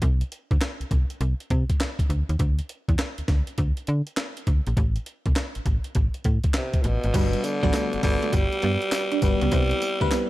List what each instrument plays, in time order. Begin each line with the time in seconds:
0.02 fm bass C2, kick, closed hi-hat
0.21 closed hi-hat
0.32 closed hi-hat
0.51 fm bass D2, kick, closed hi-hat
0.61 snare, clap, closed hi-hat
0.81 fm bass C2, closed hi-hat
0.91 fm bass C2, kick, closed hi-hat
1.10 closed hi-hat
1.21 fm bass C2, closed hi-hat
1.40 closed hi-hat
1.50 fm bass C3, kick, closed hi-hat
1.70 kick, closed hi-hat
1.81 snare, clap, closed hi-hat
1.99 kick, closed hi-hat
2.10 fm bass D2, closed hi-hat
2.29 fm bass D#2, closed hi-hat
2.39 fm bass D2, kick, closed hi-hat
2.59 closed hi-hat
2.69 closed hi-hat
2.88 fm bass E2, kick, closed hi-hat
2.99 snare, clap, closed hi-hat
3.18 fm bass D2, closed hi-hat
3.28 fm bass D2, kick, snare, closed hi-hat
3.47 closed hi-hat
3.58 fm bass D2, kick, closed hi-hat
3.77 closed hi-hat
3.87 fm bass D3, closed hi-hat
4.07 closed hi-hat
4.17 snare, clap, closed hi-hat
4.37 closed hi-hat
4.47 fm bass D2, kick, closed hi-hat
4.67 fm bass A#1, closed hi-hat
4.77 fm bass A1, kick, closed hi-hat
4.96 closed hi-hat
5.06 closed hi-hat
5.26 fm bass C2, kick, closed hi-hat
5.36 snare, clap, closed hi-hat
5.55 fm bass A1, closed hi-hat
5.66 fm bass A1, kick, closed hi-hat
5.84 closed hi-hat
5.95 fm bass A1, kick, closed hi-hat
6.14 closed hi-hat
6.24 fm bass A2, kick, closed hi-hat
6.44 kick, closed hi-hat
6.54 tenor saxophone C3, snare, clap, closed hi-hat
6.74 kick, closed hi-hat
6.82 fm bass A1, tenor saxophone A#2, closed hi-hat
6.86 tenor saxophone B2
7.04 fm bass G#1, closed hi-hat
7.14 fm bass G1, clean electric guitar G3, fm electric piano G3 B3 D4 F#4 B4, kick, closed hi-hat, crash, tambourine
7.33 closed hi-hat
7.44 tenor saxophone D3, muted clean electric guitar stroke, closed hi-hat, tambourine
7.63 fm bass A1, clean electric guitar F#3, fm electric piano G3 B3 D4 F#4 B4, kick, closed hi-hat
7.73 clean electric guitar A3, snare, clap, closed hi-hat, tambourine
7.93 fm bass G1, closed hi-hat
8.03 fm bass G1, tenor saxophone D3, fm electric piano G3 B3 D4 F#4 B4, muted clean electric guitar stroke, kick, snare, open hi-hat, tambourine
8.23 clean electric guitar A3, closed hi-hat
8.33 fm bass G1, tenor saxophone G3, kick, closed hi-hat, tambourine
8.52 closed hi-hat
8.62 fm bass G2, clean electric guitar B3, closed hi-hat
8.82 closed hi-hat
8.92 snare, clap, closed hi-hat, tambourine
9.12 clean electric guitar D4, closed hi-hat
9.22 fm bass G1, fm electric piano G3 B3 D4 F#4 B4, tenor saxophone G3, muted clean electric guitar stroke, kick, closed hi-hat, tambourine
9.41 fm bass C#2, clean electric guitar B3, closed hi-hat
9.52 fm bass C2, fm electric piano G3 B3 C4 E4 B4, clean electric guitar C4, kick, closed hi-hat, tambourine
9.71 closed hi-hat
9.82 muted clean electric guitar stroke, closed hi-hat, tambourine
10.01 fm bass D2, fm electric piano G3 B3 C4 E4 B4, clean electric guitar A3, kick, closed hi-hat
10.11 clean electric guitar B3, snare, clap, closed hi-hat, tambourine